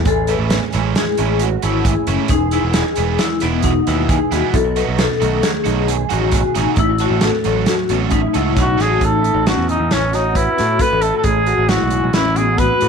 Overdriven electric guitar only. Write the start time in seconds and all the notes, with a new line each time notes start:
0.29 E3 A3 C#4 E4
0.74 E3 A3 C#4 E4
1.18 E3 A3 C#4 E4
1.63 E3 A3 C#4 E4
2.08 E3 A3 C#4 E4
2.53 E3 G#3 B3 E4
2.97 E3 G#3 B3 E4
3.42 E3 G#3 B3 E4
3.87 E3 G#3 B3 E4
4.31 E3 G#3 B3 E4
4.76 F#3 A3 D#4 F#4
5.20 F#3 A3 D#4 F#4
5.64 F#3 A3 D#4 F#4
6.09 F#3 A3 D#4 F#4
6.55 F#3 A3 D#4 F#4
7.00 A3 C#4 F#4 A4
7.45 A3 C#4 F#4 A4
7.90 A3 C#4 F#4 A4
8.34 A3 C#4 F#4 A4
8.78 A3 C#4 F#4 A4